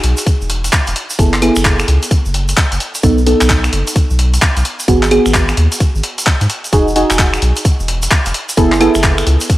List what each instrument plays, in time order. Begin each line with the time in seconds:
Already playing: synth stab D#4 F#4 G#4
0.03 sub bass B1, closed hi-hat
0.17 closed hi-hat, shaker
0.27 kick, closed hi-hat, shaker
0.41 sub bass E1, shaker
0.50 closed hi-hat
0.64 closed hi-hat, shaker
0.72 kick, clap, shaker
0.87 sub bass E1, closed hi-hat, shaker
0.96 closed hi-hat
1.10 closed hi-hat, shaker
1.19 sub bass F#1, synth stab B3 E4 G#4 A4, kick, closed hi-hat, shaker
1.33 clap, shaker
1.42 synth stab B3 E4 G#4 A4, closed hi-hat, claves
1.56 sub bass F#1, finger snap, shaker
1.64 kick, clap, shaker
1.79 finger snap, closed hi-hat, shaker
1.88 sub bass C#2, closed hi-hat
2.03 closed hi-hat, shaker
2.11 kick, closed hi-hat, shaker
2.25 sub bass F#1, shaker
2.34 closed hi-hat
2.48 closed hi-hat, shaker
2.57 kick, clap, shaker
2.72 sub bass F#1, closed hi-hat, shaker
2.80 closed hi-hat
2.95 closed hi-hat, shaker
3.03 sub bass B1, synth stab B3 D#4 A4, kick, closed hi-hat, shaker
3.18 shaker
3.26 synth stab B3 D#4 A4, closed hi-hat
3.41 sub bass B1, finger snap, clap, shaker
3.50 kick, clap, shaker
3.64 finger snap, closed hi-hat, shaker
3.73 sub bass F#1, closed hi-hat
3.87 closed hi-hat, shaker
3.96 kick, closed hi-hat, shaker
4.10 sub bass B1, shaker
4.19 closed hi-hat
4.34 closed hi-hat, shaker
4.42 kick, clap, shaker
4.57 sub bass B1, closed hi-hat, shaker
4.65 closed hi-hat
4.80 closed hi-hat, shaker
4.88 sub bass G#1, synth stab B3 F#4 G#4, kick, closed hi-hat, shaker
5.03 clap, shaker
5.11 synth stab B3 F#4 G#4, closed hi-hat, claves
5.26 sub bass G#1, finger snap, shaker
5.34 kick, clap, shaker
5.49 finger snap, closed hi-hat, shaker
5.57 sub bass D#2, closed hi-hat
5.72 closed hi-hat, shaker
5.80 kick, closed hi-hat
5.95 sub bass G#1, shaker
6.03 closed hi-hat
6.18 closed hi-hat, shaker
6.26 kick, clap
6.41 sub bass G#2, closed hi-hat, shaker
6.50 closed hi-hat
6.64 closed hi-hat, shaker
6.73 sub bass E1, synth stab D#4 F#4 G#4, kick, closed hi-hat, shaker
6.88 shaker
6.96 synth stab D#4 F#4 G#4, closed hi-hat
7.10 sub bass E1, finger snap, clap, shaker
7.19 kick, clap, shaker
7.34 finger snap, closed hi-hat, shaker
7.42 sub bass B1, closed hi-hat
7.56 closed hi-hat, shaker
7.65 kick, closed hi-hat, shaker
7.80 sub bass E1, shaker
7.88 closed hi-hat
8.02 closed hi-hat, shaker
8.11 kick, clap, shaker
8.26 sub bass E1, closed hi-hat, shaker
8.34 closed hi-hat
8.49 closed hi-hat, shaker
8.57 sub bass F#1, synth stab B3 E4 G#4 A4, kick, closed hi-hat, shaker
8.72 clap, shaker
8.80 synth stab B3 E4 G#4 A4, closed hi-hat, claves
8.95 sub bass F#1, finger snap, shaker
9.03 kick, clap, shaker
9.18 finger snap, closed hi-hat, shaker
9.27 sub bass C#2, closed hi-hat
9.40 closed hi-hat, shaker
9.50 kick, closed hi-hat, shaker